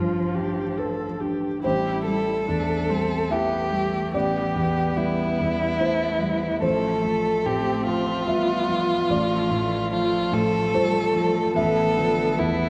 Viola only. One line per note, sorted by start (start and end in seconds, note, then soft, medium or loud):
0.00 0.36 F4 soft
0.35 0.79 G4 medium
0.78 1.22 A4 medium
1.20 1.63 G4 soft
1.64 2.44 E4 medium
2.49 2.92 D4 medium
2.90 3.32 C4 medium
3.31 3.74 B3 medium
3.72 4.15 A3 medium
4.13 6.62 B3 medium
6.63 7.44 A3 medium
7.47 8.30 C4 medium
8.28 9.12 B3 medium
9.11 9.92 A3 medium
9.92 11.53 A3 medium
11.56 12.69 B3 medium